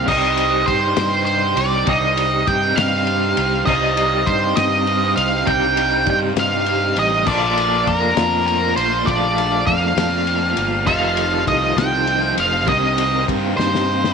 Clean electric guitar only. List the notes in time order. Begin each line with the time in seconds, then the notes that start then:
0.05 C3 G3 C4 D#4 G4
1.86 C3 G3 C4 D#4 G4
3.66 C3 G3 C4 D#4 G4
5.46 C3 G3 C4 D#4 G4
7.25 A#2 F3 A3 D4 F4
9.05 A#2 F3 A3 D4
9.09 F4
10.85 F2 C3 D#3 A3 D#4 F4
12.67 C3 D#3 A#3 C4 G4